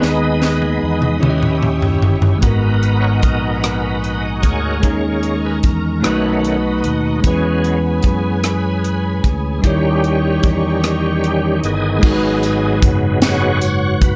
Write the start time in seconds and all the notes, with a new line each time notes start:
Already playing: B5
0.00 D#2 D#3 G#3 B3 D#4 G#4 B4 D5 D#5 G#5 D#6, snare
0.08 D#5
0.42 snare
0.62 high tom
0.83 E2
1.02 mid tom
1.20 D#2 D#3 C#4 E4 G4 C#5 G5 C#6, mid tom
1.24 E4
1.30 D#5
1.43 mid tom
1.63 mid tom
1.82 floor tom
2.02 G1, floor tom
2.22 floor tom
2.38 G#3 B3 A#4 B4, closed hi-hat
2.43 G#1 G#2 D#4 F#4 A#4 F#5 G#5 A#5, kick
2.83 closed hi-hat
3.00 C#5
3.20 A#1 D#5, kick, closed hi-hat
3.59 B3 D#4 F#4 A#4 B4
3.64 cross-stick, closed hi-hat
4.04 closed hi-hat
4.20 D#5
4.42 D2 G#4 A#4 C#5, kick, closed hi-hat
4.81 D#2 D#3 G#3 A#3 C#4 D#4 D#5 C#6, kick, closed hi-hat
4.85 A#4
5.23 closed hi-hat
5.45 B4
5.63 E2 A#4, kick, closed hi-hat
6.00 B2 D#3 A3 C#4 D#4 F#4 B4 D#5 F#5 A5
6.04 B1 D#4 B4 B5, cross-stick, closed hi-hat
6.45 closed hi-hat
6.84 D#2, closed hi-hat
7.19 G#3 C#4
7.24 E2 E3 F#3 G#3 B3 E4 B4 C#5 G#5, kick, closed hi-hat
7.28 C#4 G#4
7.64 closed hi-hat
8.03 F#2, kick, closed hi-hat
8.44 G#4 B4, cross-stick, closed hi-hat
8.84 closed hi-hat
9.24 D2, kick, closed hi-hat
9.59 G3 D#4
9.63 D#2 D#3 G3 C#4 E4 G4 C#5 D#5 G5 C#6, kick, closed hi-hat
10.04 closed hi-hat
10.43 E2, kick, closed hi-hat
10.84 cross-stick, closed hi-hat
11.24 closed hi-hat
11.63 G1 B3 G#4 D#5, closed hi-hat
11.99 G#3 D#4
12.03 G#1 G#2 F#3 G#3 B3 F#4 A#4, kick, crash, tambourine
12.13 B4
12.43 closed hi-hat, tambourine
12.82 F#1, kick, closed hi-hat
13.22 F#3 G#3 B3 F#4 C#5, snare, closed hi-hat, tambourine
13.61 closed hi-hat, tambourine
14.02 B4, kick, closed hi-hat